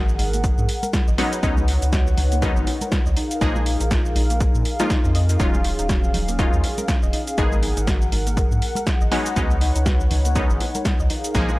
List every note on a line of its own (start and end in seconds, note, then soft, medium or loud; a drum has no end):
0.00 0.16 G#1 medium
0.00 1.16 G#3 medium
0.00 1.16 A#3 medium
0.00 1.16 B3 medium
0.00 1.16 D#4 medium
0.00 1.14 G#4 medium
0.00 1.16 G#4 loud
0.00 1.16 A#4 medium
0.00 1.16 F#5 loud
0.09 shaker soft
0.19 0.54 G#1 medium
0.19 0.24 D#4 medium
0.19 open hi-hat loud
0.19 high conga medium
0.33 0.36 A#3 medium
0.33 closed hi-hat medium
0.33 shaker medium
0.44 0.47 A#4 medium
0.44 kick loud
0.44 closed hi-hat medium
0.44 shaker medium
0.58 0.67 G#2 loud
0.58 shaker soft
0.69 open hi-hat loud
0.83 0.87 A#4 medium
0.83 closed hi-hat medium
0.83 high conga medium
0.83 shaker medium
0.93 0.99 F4 medium
0.93 kick loud
0.93 snare loud
0.93 closed hi-hat medium
0.93 shaker medium
1.08 1.16 G#1 medium
1.08 1.12 D#5 medium
1.08 shaker soft
1.18 1.41 F#3 medium
1.18 1.41 G#3 medium
1.18 1.41 B3 medium
1.18 1.41 C#4 medium
1.18 5.36 D#4 medium
1.18 1.41 D#4 loud
1.18 1.24 D#4 medium
1.18 3.14 B4 medium
1.18 3.14 C#5 medium
1.18 3.14 F#5 medium
1.18 open hi-hat loud
1.33 closed hi-hat medium
1.33 shaker medium
1.43 1.78 C#2 loud
1.43 2.40 F#3 medium
1.43 2.40 G#3 medium
1.43 2.40 B3 medium
1.43 2.40 C#4 medium
1.43 1.46 D#4 medium
1.43 2.40 D#4 loud
1.43 kick loud
1.43 closed hi-hat medium
1.43 shaker medium
1.57 high conga loud
1.57 shaker soft
1.68 open hi-hat loud
1.82 2.14 C#2 medium
1.82 1.86 D#4 medium
1.82 closed hi-hat medium
1.82 shaker medium
1.93 1.98 F#4 loud
1.93 kick loud
1.93 snare loud
1.93 closed hi-hat medium
1.93 shaker medium
2.07 shaker soft
2.17 2.53 C#2 medium
2.17 2.23 D#4 medium
2.17 open hi-hat loud
2.17 high conga medium
2.17 low conga medium
2.32 2.34 A#3 medium
2.32 closed hi-hat medium
2.32 shaker medium
2.42 3.15 F#3 medium
2.42 3.15 G#3 medium
2.42 3.15 B3 medium
2.42 3.15 C#4 medium
2.42 3.15 D#4 loud
2.42 2.45 A#4 medium
2.42 kick loud
2.42 closed hi-hat medium
2.42 shaker medium
2.57 2.65 G#1 loud
2.57 high bongo soft
2.57 shaker soft
2.67 open hi-hat loud
2.67 high bongo medium
2.81 2.85 A#4 medium
2.81 closed hi-hat medium
2.81 high conga medium
2.81 shaker medium
2.92 2.97 F4 medium
2.92 kick loud
2.92 snare loud
2.92 closed hi-hat medium
2.92 shaker medium
3.06 3.15 C#2 medium
3.06 3.10 D#5 medium
3.06 shaker soft
3.17 3.22 D#4 medium
3.17 9.08 G#4 medium
3.17 5.38 A#4 medium
3.17 7.34 F5 medium
3.17 open hi-hat loud
3.31 closed hi-hat medium
3.31 shaker medium
3.41 3.76 A#1 loud
3.41 4.77 F3 loud
3.41 4.77 G#3 medium
3.41 4.77 A#3 medium
3.41 3.45 D#4 medium
3.41 4.77 D#4 medium
3.41 4.77 G#4 loud
3.41 kick loud
3.41 closed hi-hat soft
3.41 shaker medium
3.56 high bongo medium
3.56 high conga loud
3.56 shaker soft
3.66 open hi-hat loud
3.80 4.13 A#1 medium
3.80 3.84 D#4 medium
3.80 closed hi-hat medium
3.80 high bongo medium
3.80 shaker medium
3.91 3.96 F4 loud
3.91 kick loud
3.91 snare loud
3.91 closed hi-hat medium
3.91 shaker medium
4.05 shaker soft
4.15 4.51 A#1 medium
4.15 4.21 D#4 medium
4.15 open hi-hat loud
4.15 high conga medium
4.30 4.32 A#3 medium
4.30 closed hi-hat medium
4.30 shaker medium
4.41 4.44 A#4 medium
4.41 kick loud
4.41 closed hi-hat soft
4.41 shaker medium
4.55 4.64 A#2 loud
4.55 shaker soft
4.65 open hi-hat loud
4.80 5.37 F3 medium
4.80 5.37 G#3 medium
4.80 5.37 A#3 medium
4.80 4.82 D#4 loud
4.80 5.37 D#4 medium
4.80 5.37 F4 loud
4.80 closed hi-hat medium
4.80 high conga medium
4.80 shaker medium
4.90 4.95 D#4 loud
4.90 kick loud
4.90 snare loud
4.90 closed hi-hat soft
4.90 shaker medium
5.05 5.37 F2 loud
5.05 5.08 D#4 medium
5.05 shaker soft
5.15 5.20 D#5 loud
5.15 open hi-hat loud
5.29 5.33 D#4 medium
5.29 closed hi-hat medium
5.29 shaker medium
5.40 5.75 D#1 loud
5.40 6.36 F#3 medium
5.40 7.36 F#3 medium
5.40 6.36 G#3 medium
5.40 7.36 C#4 medium
5.40 6.36 C#4 medium
5.40 5.43 D#4 medium
5.40 6.36 D#4 medium
5.40 6.36 F4 loud
5.40 kick loud
5.40 closed hi-hat soft
5.40 shaker medium
5.54 high conga loud
5.54 shaker soft
5.64 5.70 D#4 medium
5.64 open hi-hat loud
5.79 6.11 D#1 medium
5.79 5.83 D#4 medium
5.79 closed hi-hat medium
5.79 shaker medium
5.89 5.94 F#4 loud
5.89 kick loud
5.89 snare loud
5.89 closed hi-hat soft
5.89 shaker medium
6.04 shaker soft
6.14 6.49 D#1 medium
6.14 6.19 D#4 medium
6.14 open hi-hat loud
6.14 high conga medium
6.14 low conga medium
6.28 6.31 A#3 medium
6.28 closed hi-hat medium
6.28 shaker medium
6.39 7.36 F#3 medium
6.39 7.36 G#3 medium
6.39 7.36 C#4 medium
6.39 7.36 D#4 medium
6.39 7.36 F4 medium
6.39 6.42 A#4 medium
6.39 kick loud
6.39 closed hi-hat soft
6.39 shaker medium
6.53 6.62 D#2 medium
6.53 high bongo soft
6.53 shaker soft
6.64 open hi-hat loud
6.64 high bongo medium
6.78 6.82 A#4 medium
6.78 closed hi-hat medium
6.78 high conga medium
6.78 shaker medium
6.88 6.94 F4 medium
6.88 kick loud
6.88 snare loud
6.88 closed hi-hat medium
6.88 shaker medium
7.03 7.11 D#1 medium
7.03 7.07 D#5 medium
7.03 shaker soft
7.13 7.18 D#4 medium
7.13 open hi-hat loud
7.28 closed hi-hat medium
7.28 shaker medium
7.38 7.73 G#1 loud
7.38 9.09 G#3 loud
7.38 9.09 A#3 medium
7.38 9.09 B3 medium
7.38 7.41 D#4 medium
7.38 9.09 D#4 medium
7.38 9.09 G#4 loud
7.38 9.10 A#4 medium
7.38 11.06 F#5 loud
7.38 kick loud
7.38 closed hi-hat medium
7.38 shaker medium
7.52 high bongo medium
7.52 high conga medium
7.52 shaker soft
7.63 7.68 D#4 medium
7.63 open hi-hat loud
7.77 8.10 G#1 medium
7.77 7.81 D#4 medium
7.77 closed hi-hat medium
7.77 high bongo medium
7.77 shaker medium
7.88 7.93 F#4 loud
7.88 kick loud
7.88 snare loud
7.88 closed hi-hat medium
7.88 shaker medium
8.02 shaker soft
8.12 8.48 G#1 medium
8.12 8.18 D#4 medium
8.12 open hi-hat loud
8.12 high conga medium
8.27 8.29 A#3 medium
8.27 closed hi-hat medium
8.27 shaker medium
8.37 8.40 A#4 medium
8.37 kick loud
8.37 closed hi-hat medium
8.37 shaker medium
8.52 8.60 G#2 loud
8.52 shaker soft
8.62 open hi-hat loud
8.75 8.80 A#4 medium
8.75 closed hi-hat medium
8.75 high conga loud
8.75 shaker medium
8.87 8.92 F4 medium
8.87 kick loud
8.87 snare loud
8.87 closed hi-hat medium
8.87 shaker medium
9.01 9.10 G#1 medium
9.01 9.05 D#5 medium
9.01 shaker soft
9.12 9.34 F#3 medium
9.12 9.34 G#3 medium
9.12 9.34 B3 medium
9.12 9.34 C#4 medium
9.12 9.34 D#4 loud
9.12 9.17 D#4 medium
9.12 11.59 D#4 medium
9.12 11.08 B4 medium
9.12 11.08 C#5 medium
9.12 open hi-hat loud
9.26 closed hi-hat medium
9.26 shaker medium
9.36 9.71 C#2 loud
9.36 10.33 F#3 medium
9.36 10.33 G#3 medium
9.36 10.33 B3 medium
9.36 10.33 C#4 medium
9.36 9.40 D#4 medium
9.36 10.33 D#4 loud
9.36 kick loud
9.36 closed hi-hat medium
9.36 shaker medium
9.50 high conga medium
9.50 shaker soft
9.61 9.67 D#4 medium
9.61 open hi-hat loud
9.76 10.08 C#2 medium
9.76 9.79 D#4 medium
9.76 closed hi-hat medium
9.76 shaker medium
9.86 9.91 F#4 loud
9.86 kick loud
9.86 snare loud
9.86 closed hi-hat medium
9.86 shaker medium
10.00 shaker soft
10.10 10.46 C#2 medium
10.10 10.16 D#4 medium
10.10 open hi-hat loud
10.10 high conga medium
10.10 low conga medium
10.25 10.28 A#3 medium
10.25 closed hi-hat medium
10.25 shaker medium
10.36 11.09 F#3 medium
10.36 11.09 G#3 medium
10.36 11.09 B3 medium
10.36 11.09 C#4 medium
10.36 11.09 D#4 medium
10.36 10.39 A#4 medium
10.36 kick loud
10.36 closed hi-hat medium
10.36 shaker medium
10.50 10.58 G#1 loud
10.50 high bongo soft
10.50 shaker soft
10.60 open hi-hat loud
10.60 high bongo medium
10.75 10.79 A#4 medium
10.75 closed hi-hat medium
10.75 high conga medium
10.75 shaker medium
10.85 10.91 F4 medium
10.85 kick loud
10.85 snare loud
10.85 closed hi-hat medium
10.85 shaker medium
11.00 11.08 C#2 medium
11.00 11.03 D#5 medium
11.00 shaker soft
11.10 11.15 D#4 medium
11.10 11.59 G#4 medium
11.10 11.59 A#4 medium
11.10 11.59 F5 medium
11.10 open hi-hat loud
11.24 closed hi-hat medium
11.24 shaker medium
11.35 11.59 A#1 loud
11.35 11.59 F3 loud
11.35 11.59 G#3 medium
11.35 11.59 A#3 medium
11.35 11.38 D#4 medium
11.35 11.59 D#4 medium
11.35 11.59 G#4 loud
11.35 kick loud
11.35 closed hi-hat medium
11.35 shaker medium
11.49 high bongo medium
11.49 high conga medium
11.49 shaker soft